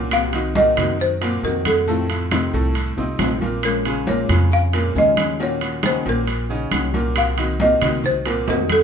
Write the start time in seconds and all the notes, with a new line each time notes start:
Already playing: C2 A#2 A#3 C#4 F#4 A#4
0.10 C3 D#3 A#3 C4 F#4 F5, high conga, high timbale, claves, maracas
0.33 D#3 A#3 C4 D#4 F#4, high conga, high timbale, maracas
0.55 A#2 C3 D#3 A#3 C4 F#4 A#4 D#5, high conga, maracas
0.77 F#2 D#3 D#4 F#4, high conga, low conga, high timbale, claves, maracas
0.99 C5, muted nylon-string guitar stroke, high conga, maracas
1.21 A#2 A#3 C4 F#4 A#4, high conga, high timbale, maracas
1.43 F2 C3 D#3 A#3 C4 D#4 F#4 A#4, high conga, maracas
1.64 A#3 C4 F#4 A4, high conga, high timbale, claves, maracas
1.86 A2 C3 D#3 A3 C4 F4 A4, high conga, maracas
2.09 A3 C4 F4, high conga, high timbale, maracas
2.31 C3 D#3 A3 C4 D#4 F4, high conga, high timbale, claves, maracas
2.53 C2 A2 A3 A4, high conga, maracas
2.75 muted nylon-string guitar stroke, high conga, high timbale, maracas
2.97 C2 C3 A3 C4 D#4 F4, high conga, maracas
3.19 A#1 C3 D#3 A3 C4 F4, high conga, high timbale, low timbale, claves, maracas
3.41 A#2 A3 A#3 C4 F4 A#4, high conga, maracas
3.63 F3 G#3 C#4 F4 A#4, high conga, high timbale, claves, maracas
3.85 C#3 G#3 C#4 F4, high conga, high timbale, maracas
4.07 A#2 F3 G#3 A#3 C#4 F4 A#4 C#5, high conga, maracas
4.29 F2 C#3 C#4 F4, high conga, low conga, high timbale, claves, maracas
4.51 F5, muted nylon-string guitar stroke, high conga, maracas
4.72 A#2 G#3 A#3 C#4 F4 A#4, high conga, high timbale, maracas
4.94 D#2 C#3 F3 G#3 C#4 F4 D#5, high conga, maracas
5.17 G#3 C#4 F4, high conga, high timbale, claves, maracas
5.38 A#2 D#3 A#3 C#4 F#4 A#4, high conga, maracas
5.43 C#5
5.61 A#3 C#4 F#4, high conga, high timbale, maracas
5.83 C#3 D#3 A#3 C#4 D#4 F#4 C5, high conga, high timbale, claves, maracas
6.06 A#1 A#2 A#3 A#4, high conga, maracas
6.26 muted nylon-string guitar stroke, high conga, high timbale, maracas
6.49 C#3 A#3 C#4 D#4 F#4, high conga, maracas
6.71 C2 D#3 A#3 C#4 F#4, high conga, high timbale, claves, maracas
6.92 A#2 A#3 C#4 F#4 A#4, high conga, maracas
7.15 C3 D#3 A#3 C4 F#4 F5, high conga, high timbale, claves, maracas
7.36 D#3 A#3 C4 D#4 F#4, high conga, high timbale, maracas
7.59 A#2 C3 D#3 A#3 C4 F#4 A#4 D#5, high conga, maracas
7.82 C2 D#3 D#4 F#4, high conga, low conga, high timbale, claves, maracas
8.03 C5, muted nylon-string guitar stroke, high conga, low conga, maracas
8.25 A#2 A#3 C4 F#4 A#4, high conga, high timbale, maracas
8.47 F2 C3 D#3 A#3 C4 D#4 F#4 A#4, high conga, low timbale, maracas
8.69 A#3 C4 F#4 A4, high conga, high timbale, claves, maracas